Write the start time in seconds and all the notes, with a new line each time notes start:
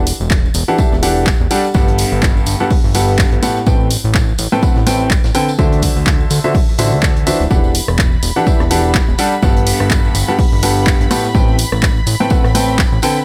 Already playing: E1
0.07 open hi-hat, tambourine
0.20 E1, tambourine
0.30 kick, snare, clap, tambourine
0.45 tambourine
0.54 E1, open hi-hat, tambourine
0.68 E3 D4 G4 A4 F#5, tambourine
0.78 E3 D4 E5, kick, tambourine
0.92 E1, snare, tambourine
1.03 E3 D4 G4 A4 F#5, open hi-hat, tambourine
1.16 tambourine
1.26 kick, snare, clap, tambourine
1.40 E1, tambourine
1.51 G3 D4 G4 A4 F#5, open hi-hat, tambourine
1.64 tambourine
1.74 G1 G2 B3 G4 A4 F#5, kick, tambourine
1.88 closed hi-hat, tambourine
1.98 snare, open hi-hat, tambourine
2.12 G1, tambourine
2.23 kick, snare, clap, tambourine
2.37 tambourine
2.46 G1, open hi-hat, tambourine
2.60 G2 B3 G4 A4 F#5, tambourine
2.70 kick, open hi-hat, tambourine
2.84 G1, tambourine
2.94 G2 B3 G4 A4 F#5, snare, open hi-hat, tambourine
3.08 tambourine
3.19 kick, snare, clap, tambourine
3.32 G1, closed hi-hat, tambourine
3.43 A2 B3 G4 A4 F#5, open hi-hat, tambourine
3.56 snare, tambourine
3.66 A1 A2 C4 A4 B4 G5, kick, tambourine
3.81 tambourine
3.90 open hi-hat, tambourine
4.04 A1, tambourine
4.15 kick, snare, clap, tambourine
4.29 tambourine
4.38 A1, open hi-hat, tambourine
4.52 A2 C4 A4 B4 G5, tambourine
4.63 A2 C4 A4 B4 F#5, kick, tambourine
4.75 A1, snare, tambourine
4.87 A2 C4 A4 B4 G5, snare, open hi-hat, tambourine
5.00 tambourine
5.11 kick, clap, tambourine
5.24 A1, snare, tambourine
5.25 tambourine
5.35 D3 C4 A4 B4 G5, open hi-hat, tambourine
5.48 tambourine
5.59 D2 D3 D4 F#4 C5 E5, kick, tambourine
5.72 closed hi-hat, tambourine
5.82 kick, snare, open hi-hat, tambourine
5.96 D2, tambourine
6.06 kick, snare, clap, tambourine
6.20 tambourine
6.30 D2, open hi-hat, tambourine
6.44 D3 D4 F#4 C5 E5, tambourine
6.55 kick, open hi-hat, tambourine
6.69 tambourine
6.78 A1 D3 D4 F#4 C5 E5, snare, open hi-hat, tambourine
6.92 D2, tambourine
7.03 kick, snare, clap, tambourine
7.17 closed hi-hat, tambourine
7.27 E3 D4 F#4 C5 E5, open hi-hat, tambourine
7.40 D1, snare, tambourine
7.51 E1 E3 D4 G4 A4 F#5 B5, kick, tambourine
7.64 tambourine
7.75 open hi-hat, tambourine
7.88 E1, cross-stick, tambourine
7.99 kick, snare, clap, tambourine
8.12 tambourine
8.23 E1, open hi-hat, tambourine
8.36 E3 D4 G4 A4 F#5, tambourine
8.47 E3 D4 G4 A4 E5, kick, tambourine
8.60 E1, cross-stick, snare, tambourine
8.71 E3 D4 G4 A4 F#5, open hi-hat, tambourine
8.84 tambourine
8.94 kick, snare, clap, tambourine
9.08 E1, tambourine
9.18 G3 D4 G4 A4 F#5, open hi-hat, tambourine
9.32 tambourine
9.42 G1 G2 B3 G4 A4 F#5, kick, tambourine
9.56 closed hi-hat, tambourine
9.67 snare, open hi-hat, tambourine
9.80 G1, cross-stick, tambourine
9.91 kick, snare, clap, tambourine
10.05 tambourine
10.15 G1, open hi-hat, tambourine
10.28 G2 B3 G4 A4 F#5
10.39 kick, open hi-hat, tambourine
10.52 G1, tambourine
10.63 G2 B3 G4 A4 F#5, snare, open hi-hat, tambourine
10.77 tambourine
10.86 kick, snare, clap, tambourine
11.00 G1, closed hi-hat, tambourine
11.11 A2 B3 G4 A4 F#5, cross-stick, open hi-hat, tambourine
11.24 snare, tambourine
11.35 A1 A2 C4 A4 B4 G5, kick, tambourine
11.48 tambourine
11.58 open hi-hat, tambourine
11.72 A1, cross-stick, tambourine
11.83 kick, snare, clap, tambourine
11.97 tambourine
12.06 A1, open hi-hat, tambourine
12.20 A2 C4 A4 B4 G5, tambourine
12.30 A2 C4 A4 B4 F#5, kick, tambourine
12.44 A1, cross-stick, snare, tambourine
12.55 A2 C4 A4 B4 G5, open hi-hat, tambourine
12.68 tambourine
12.79 kick, snare, clap, tambourine
12.92 A1, tambourine
13.02 D3 C4 A4 B4 G5, open hi-hat, tambourine
13.16 tambourine